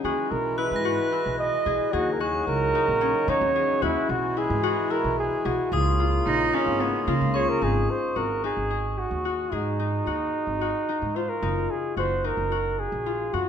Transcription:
Already playing: harp C#4 D#4 G#4
0.04 upright bass D#2, harmonium E3 G#3 E4, harp F#4, flugelhorn G#4
0.31 upright bass B1, flugelhorn A#4
0.58 harp E4, flugelhorn B4, crotales F#6
0.71 upright bass G#2
0.76 crotales A#6
0.85 harp F#4
1.12 harp E4
1.26 upright bass B1
1.39 flugelhorn D#5
1.66 upright bass B1, harp G#4
1.93 upright bass D#2, harmonium C#3 F#3 D#4, flugelhorn F#4, harp G#4
2.13 flugelhorn A#4
2.20 harp F#4, flugelhorn G#4, crotales C#6
2.47 upright bass C#2, flugelhorn A#4
2.75 harp D#4
2.88 upright bass A#1
3.01 harp C#4
3.28 upright bass D#3, harp D#4, flugelhorn C#5
3.41 upright bass D#2
3.56 harp G#4
3.82 upright bass D#2, harmonium E3 G#3 E4, flugelhorn E4, harp F#4
4.09 upright bass B1, flugelhorn F#4
4.37 harp E4, flugelhorn G#4
4.50 upright bass G#2
4.63 harp F#4
4.90 harp E4, flugelhorn A#4
5.04 upright bass B1
5.19 flugelhorn G#4
5.45 upright bass B1, flugelhorn F#4, harp G#4
5.72 upright bass C#2, harmonium C#3 A#3 F4, flugelhorn F4, harp G#4, crotales D#6
6.00 harp F4
6.26 upright bass A#1, cello D#4
6.53 cello C#4, harp D#4
6.67 upright bass G#1
6.80 cello B3, harp C#4
7.07 upright bass C#3, cello A#3, harp F4
7.21 upright bass C#2
7.34 harp G#4, flugelhorn C#5, crotales C#6
7.50 flugelhorn A#4
7.62 upright bass G#1, harp D#4, flugelhorn G#4
7.90 flugelhorn C5
8.16 upright bass G#1, harp F#4, flugelhorn A#4
8.44 harp D#4, flugelhorn G#4
8.57 upright bass G#1
8.71 harp G#4
8.99 flugelhorn F#4
9.11 upright bass D#2
9.25 harp F#4
9.52 upright bass G#2, flugelhorn D#4, harp G#4
9.80 harp D#4
10.06 upright bass D#2, harp F#4
10.47 upright bass G#1
10.61 harp F#4
10.89 harp D#4
11.02 upright bass G#2
11.16 harp F4, flugelhorn C5
11.30 flugelhorn A#4
11.42 upright bass F#1, harp D#4
11.71 flugelhorn G#4
11.97 upright bass F#1, harp F#4, flugelhorn C5
12.24 harp D#4, flugelhorn A#4
12.37 upright bass F#1
12.52 harp F#4
12.80 flugelhorn G#4
12.92 upright bass A#1
13.06 harp F4
13.33 upright bass F#2, harp F#4, flugelhorn F#4

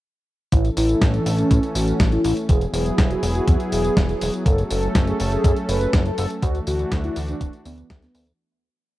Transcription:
0.52 analog synth bass A1, analog synth pad E3 A3 C#4 A4, analog polysynth E4, kick, closed hi-hat, tambourine
0.65 closed hi-hat, tambourine
0.77 analog synth bass A1, analog polysynth E4, open hi-hat, tambourine
0.89 closed hi-hat, tambourine
1.01 analog synth bass A1, kick, snare, closed hi-hat, tambourine
1.14 analog polysynth D4, closed hi-hat, tambourine
1.26 analog synth bass A1, open hi-hat, tambourine
1.38 analog polysynth C#4, closed hi-hat, tambourine
1.51 analog synth bass A2, kick, closed hi-hat, tambourine
1.63 closed hi-hat, tambourine
1.75 analog synth bass A1, analog polysynth F#4, open hi-hat, tambourine
1.88 closed hi-hat, tambourine
2.00 analog synth bass A1, kick, snare, closed hi-hat, tambourine
2.12 analog polysynth E4, closed hi-hat, tambourine
2.24 analog synth bass A1, open hi-hat, tambourine
2.37 closed hi-hat, tambourine
2.49 analog synth bass E1, analog synth pad F#3 B3 E4 G#4, analog polysynth G#4, kick, closed hi-hat, tambourine
2.61 closed hi-hat, tambourine
2.74 analog synth bass E1, analog polysynth G#4, open hi-hat, tambourine
2.86 closed hi-hat, tambourine
2.98 analog synth bass E1, kick, snare, closed hi-hat, tambourine
3.11 analog polysynth F#4, closed hi-hat, tambourine
3.23 analog synth bass E1, open hi-hat, tambourine
3.35 analog polysynth F#4, closed hi-hat, tambourine
3.47 analog synth bass E2, kick, closed hi-hat, tambourine
3.60 closed hi-hat, tambourine
3.72 analog synth bass E1, analog polysynth G#4, open hi-hat, tambourine
3.84 closed hi-hat, tambourine
3.97 analog synth bass E1, kick, snare, closed hi-hat, tambourine
4.09 analog polysynth G#4, closed hi-hat, tambourine
4.21 analog synth bass E1, open hi-hat, tambourine
4.34 closed hi-hat, tambourine
4.46 analog synth bass F#1, analog synth pad A3 C#4 A4, analog polysynth A4, kick, closed hi-hat, tambourine
4.58 closed hi-hat, tambourine
4.71 analog synth bass F#1, analog polysynth A4, open hi-hat, tambourine
4.83 closed hi-hat, tambourine
4.95 analog synth bass F#1, kick, snare, closed hi-hat, tambourine
5.07 analog polysynth G#4, closed hi-hat, tambourine
5.20 analog synth bass F#1, open hi-hat, tambourine
5.32 analog polysynth G#4, closed hi-hat, tambourine
5.44 analog synth bass F#2, kick, closed hi-hat, tambourine
5.56 closed hi-hat, tambourine
5.69 analog synth bass F#1, analog polysynth B4, open hi-hat, tambourine
5.81 closed hi-hat, tambourine
5.93 analog synth bass F#1, kick, snare, closed hi-hat, tambourine
6.06 analog polysynth A4, closed hi-hat, tambourine
6.18 analog synth bass F#1, open hi-hat, tambourine
6.30 closed hi-hat, tambourine
6.42 analog synth bass D2, analog synth pad E3 A3 D4 F#4, analog polysynth F#4, kick, closed hi-hat, tambourine
6.55 closed hi-hat, tambourine
6.67 analog synth bass D2, analog polysynth F#4, open hi-hat, tambourine
6.79 closed hi-hat, tambourine
6.92 analog synth bass D2, kick, snare, closed hi-hat, tambourine
7.04 analog polysynth E4, closed hi-hat, tambourine
7.16 analog synth bass D2, open hi-hat, tambourine
7.28 analog polysynth D4, closed hi-hat, tambourine
7.41 analog synth bass D1, kick, closed hi-hat, tambourine
7.53 closed hi-hat, tambourine
7.65 analog synth bass D2, analog polysynth B3, open hi-hat, tambourine
7.78 closed hi-hat, tambourine
7.90 analog synth bass D2, kick, snare, closed hi-hat, tambourine
8.02 analog polysynth B3, snare, closed hi-hat, tambourine
8.15 analog synth bass D2, open hi-hat, tambourine
8.27 closed hi-hat, tambourine

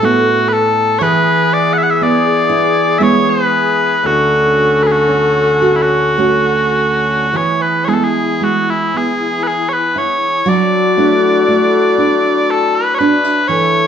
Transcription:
Already playing: accordion A2 E3 B3, nylon-string guitar A2, flute A4
0.02 nylon-string guitar A3 B3 E4, bagpipes F#4
0.48 bagpipes B4
0.53 bagpipes A4
0.99 accordion E3 G#4, nylon-string guitar E3, flute G#4, bagpipes B4 C#5
1.53 bagpipes D5
1.73 bagpipes F#5
1.78 bagpipes E5
1.83 bagpipes F#5
1.90 bagpipes E5
2.01 nylon-string guitar B3, bagpipes D5
2.49 nylon-string guitar E4
2.99 nylon-string guitar G#3 B3 E4, bagpipes E5
3.03 bagpipes C#5
3.29 bagpipes B4
4.03 nylon-string guitar D2, accordion D3 C#4 F#4, bagpipes F#4, flute A4
4.83 bagpipes B4
4.87 bagpipes G#4
4.91 bagpipes F#4
5.08 nylon-string guitar C#4
5.62 nylon-string guitar F#4
5.76 bagpipes E4
5.82 bagpipes F#4
6.18 nylon-string guitar A3 C#4 F#4
7.27 flute F#4
7.32 accordion E3 B3 G#4, nylon-string guitar E3, flute E4
7.36 bagpipes C#5
7.62 bagpipes B4
7.84 nylon-string guitar G#3 B3 E4, bagpipes C#5
7.89 bagpipes G#4
7.94 bagpipes A4
8.04 bagpipes G#4
8.41 nylon-string guitar G#3, bagpipes F#4
8.70 bagpipes E4
8.94 nylon-string guitar B3, bagpipes G#4
9.43 bagpipes B4
9.47 bagpipes G#4
9.69 bagpipes B4 C#5
9.96 nylon-string guitar E4, bagpipes C#5
10.45 accordion F#3 D4 E4, nylon-string guitar F#3, flute F#4, bagpipes D5
10.97 nylon-string guitar A3 D4 E4
11.48 nylon-string guitar A3
11.98 nylon-string guitar D4
12.50 bagpipes A4
12.75 bagpipes B4
12.94 bagpipes C#5
12.98 nylon-string guitar D4, bagpipes B4
13.25 nylon-string guitar E4
13.48 nylon-string guitar E3, accordion E3 A3, flute A4, bagpipes C#5

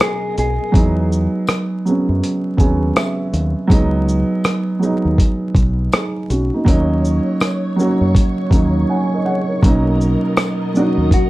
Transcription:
Already playing: string machine B2 A#4 D#5, upright piano F#3 A#3 C#4 F#4
0.00 clean electric guitar G#4, cross-stick, closed hi-hat, tambourine
0.38 fingered electric bass B1, clean electric guitar G#4, closed hi-hat, shaker
0.72 fingered electric bass E2, upright piano F#3 G#3 B3 D#4, kick, closed hi-hat
1.12 shaker
1.47 cross-stick, closed hi-hat, tambourine
1.85 upright piano F#3 G#3 B3, shaker
1.90 upright piano C#4
2.09 fingered electric bass F#2
2.23 closed hi-hat
2.57 fingered electric bass D#2, upright piano F#3 G#3 B3 G#5, kick, closed hi-hat, shaker
2.61 upright piano C#4
2.96 upright piano E5, cross-stick, closed hi-hat, tambourine
3.33 fingered electric bass D#2, closed hi-hat, shaker
3.67 fingered electric bass C#2, upright piano F#3 G#3 B3 D#4, kick, closed hi-hat
4.08 shaker
4.44 cross-stick, closed hi-hat, tambourine
4.79 upright piano F#3 G#3 B3, shaker
4.83 upright piano D#4
5.05 fingered electric bass D#2
5.18 kick, closed hi-hat
5.55 fingered electric bass B1, kick, closed hi-hat, shaker
5.92 upright piano D#4 G#4, cross-stick, closed hi-hat, tambourine
6.30 fingered electric bass B1, upright piano C#4 F#4, closed hi-hat, shaker
6.54 upright piano A#3 D#4
6.65 fingered electric bass D#2, upright piano F#3 A#3 C#4 D#4, string machine C#5, kick, closed hi-hat
7.05 shaker
7.40 cross-stick, closed hi-hat, tambourine
7.76 upright piano F#3 A#3 C#4, shaker
7.80 upright piano F#4
8.01 fingered electric bass F#2
8.15 kick, closed hi-hat
8.50 fingered electric bass D#2, upright piano F#3 A#3 C#4 D#4, kick, closed hi-hat, shaker
8.89 upright piano C#5 F#5 G#5
9.13 upright piano A#4 D#5
9.25 upright piano G#4 C#5 F#5
9.48 upright piano D#4 A#4
9.62 fingered electric bass B1, string machine B2 A#4 D#5, upright piano F#3 A#3 C#4 D#4, kick, closed hi-hat
10.01 shaker
10.37 cross-stick, closed hi-hat, tambourine
10.74 upright piano F#3 A#3 C#4 F#4, clean electric guitar D#4, shaker
10.97 fingered electric bass D#2
11.11 clean electric guitar F#4, kick, closed hi-hat

